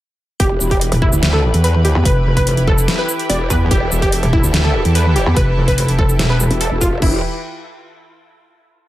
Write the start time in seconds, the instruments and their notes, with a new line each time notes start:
0.40 wobble bass E1, analog synth pad E3 E4 G4 B4, synth pluck G4, kick, closed hi-hat
0.61 wobble bass E1, shaker
0.71 synth pluck G4, kick, closed hi-hat
0.81 closed hi-hat
0.92 wobble bass E1, closed hi-hat
1.02 synth pluck E4, kick
1.13 wobble bass D2, shaker
1.23 snare, closed hi-hat
1.33 synth pluck A4
1.54 wobble bass E2, closed hi-hat
1.64 synth pluck B4, closed hi-hat
1.85 synth pluck G4, closed hi-hat
1.95 wobble bass E2
2.05 wobble bass F1, synth pluck B4, kick, closed hi-hat
2.37 synth pluck B4, kick, closed hi-hat
2.47 closed hi-hat
2.57 closed hi-hat
2.68 synth pluck A4, kick
2.78 shaker
2.88 snare, closed hi-hat
2.99 synth pluck B4
3.09 shaker
3.19 closed hi-hat
3.30 wobble bass E1, synth pluck D5, closed hi-hat
3.50 wobble bass E2, synth pluck B4, kick, closed hi-hat, shaker
3.71 wobble bass E1, synth pluck G4, analog synth pad A4, kick, closed hi-hat
3.92 wobble bass E1, shaker
4.02 synth pluck G4, kick, closed hi-hat
4.12 closed hi-hat
4.23 wobble bass E1, closed hi-hat
4.33 synth pluck E4, kick
4.44 wobble bass D2, shaker
4.54 snare, closed hi-hat
4.64 synth pluck A4
4.85 wobble bass E2, closed hi-hat
4.95 synth pluck B4, closed hi-hat
5.16 synth pluck G4, closed hi-hat
5.26 wobble bass E2
5.36 wobble bass F1, synth pluck B4, kick, closed hi-hat
5.68 synth pluck B4, kick, closed hi-hat
5.78 closed hi-hat
5.88 closed hi-hat
5.99 synth pluck A4, kick
6.09 shaker
6.19 wobble bass E1, snare, closed hi-hat
6.30 synth pluck B4
6.40 shaker
6.51 wobble bass E1, closed hi-hat
6.61 synth pluck A4, closed hi-hat
6.71 wobble bass E1
6.81 synth pluck F4, kick, closed hi-hat, shaker
7.02 wobble bass E1, analog synth pad E3 E4 G4 B4, synth pluck E4, kick, crash